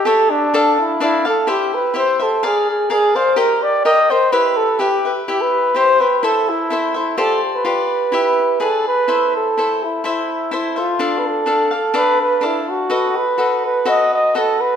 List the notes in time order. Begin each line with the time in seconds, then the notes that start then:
0.05 G4 A4 C#5 E5
0.30 D4
0.54 D4 A4 D5 F5
0.80 E4
1.00 D4 E4 A4 D5 F5
1.25 A4 D5 F5
1.47 E4 G4 C5 E5
1.74 B4
1.94 E4 G4 C5 E5
2.19 G4 A4 C5 E5
2.43 G#4 A#4 D5 F5
2.71 G#4
2.90 G#4 A#4 D5 F5
3.15 A#4 C5 D5 F5
3.36 G4 A#4 D#5 G5
3.63 D5
3.85 G4 A#4 D#5 G5
4.10 A#4 C5 D#5 G5
4.32 E4 G4 B4 E5
4.57 A4
4.79 E4 G4 B4 E5
5.05 G4 B4 E5
5.28 E4 G4 E5
5.42 B4
5.74 E4 G4 C5 E5
6.00 G4 B4 C5 E5
6.23 E4 A4 C5 E5
6.50 E4
6.70 E4 A4 C5 E5
6.94 E4 A4 C5 E5
7.17 F4 G4 A4 C5 D5
7.55 B4
7.65 F4 G4 B4 D5
8.12 E4 G4 E5
8.60 E4 G#4 A4 B4 D5
8.87 B4
9.08 E4 A4 C5 E5
9.36 A4
9.57 E4 A4 C5 E5
9.84 E4
10.04 E4 A4 C5 E5
10.51 E4 A4 C5 E5
10.76 F4 A4 C5 E5
10.99 D4 A4 D5 F5
11.18 B4
11.27 A4
11.46 D4 A4 D5 F5
11.71 A4 D5 F5
11.94 D4 A4 B4 D5 F5
12.22 B4
12.41 D4 A4 D5 F5
12.46 E4
12.70 F#4
12.90 F#4 A4 B4 D#5
13.17 B4
13.38 F#4 A4 B4 D#5
13.65 B4
13.85 F#4 A4 B4 D#5
14.14 D#5
14.35 F#4 A4 B4 D#5
14.61 B4